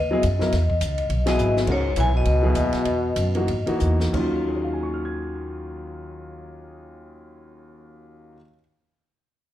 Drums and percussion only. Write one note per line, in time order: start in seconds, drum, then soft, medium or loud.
0.23 hi-hat pedal medium
0.23 ride medium
0.40 snare soft
0.52 snare soft
0.52 ride medium
0.70 kick medium
0.81 hi-hat pedal medium
0.81 ride medium
0.98 ride soft
1.10 ride medium
1.26 snare medium
1.26 ride medium
1.39 hi-hat pedal soft
1.57 snare medium
1.67 kick medium
1.67 crash medium
1.96 hi-hat pedal medium
1.96 ride medium
2.25 ride medium
2.55 hi-hat pedal medium
2.55 ride medium
2.73 snare soft
2.73 ride soft
2.85 ride medium
3.16 hi-hat pedal medium
3.16 ride medium
3.35 ride soft
3.48 ride medium
3.67 ride soft
3.80 hi-hat pedal medium
4.00 snare medium
4.14 kick soft
4.14 crash medium